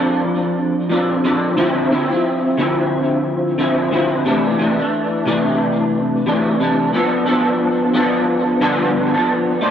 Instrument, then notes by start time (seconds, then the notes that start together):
clean electric guitar
Already playing: F3 C4 D4 A4
0.89 F3 C4 D4 A4
1.24 F3 C4 D4 A4
1.57 D3 F3 C4 E4
1.91 D3 F3 C4 E4
2.10 F3 C4 E4
2.58 D3 F3 C4 E4
3.58 D3 F3 C4 E4
3.91 D3 F3 C4 E4
4.25 C3 E3 A3 D4
4.59 C3 E3 A3 D4
4.79 E3 A3 D4
5.26 C3 E3 A3 D4
6.26 C3 E3 A3 D4
6.60 C3 E3 A3 D4
6.93 F3 B3 D4 A4
7.26 F3 B3 D4 A4
7.94 F3 B3 D4 A4
8.61 G2 D3 F3 B3 D4 A4
9.14 F3 B3 D4 A4
9.61 A3 D4 A4 C5